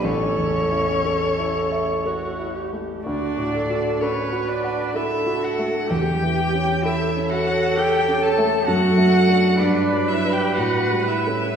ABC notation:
X:1
M:3/4
L:1/16
Q:1/4=63
K:Amix
V:1 name="Violin"
c8- c2 z2 | d4 c2 d2 e2 f2 | g4 e2 f2 g2 a2 | f4 d2 e g f2 e2 |]
V:2 name="Viola"
A4 A4 F2 G2 | F2 A2 B4 A4 | G4 A8- | A4 B8 |]
V:3 name="Cello"
C8- C2 z2 | D4 C2 D2 E2 F2 | G4 E2 F2 G2 A2 | F4 D2 E G F2 E2 |]
V:4 name="Grand piano"
(3A,,,2 E,,2 E2 (3A2 E2 e2 (3A2 E2 A,2 | (3D,,2 A,,2 F2 (3A2 F2 f2 (3A2 F2 A,2 | (3E,,2 E,2 C2 (3A2 C2 c2 (3A2 C2 A,2 | (3F,,2 A,2 [DA]2 (3G,,2 F,2 [DB]2 (3A,,2 G,2 [CA]2 |]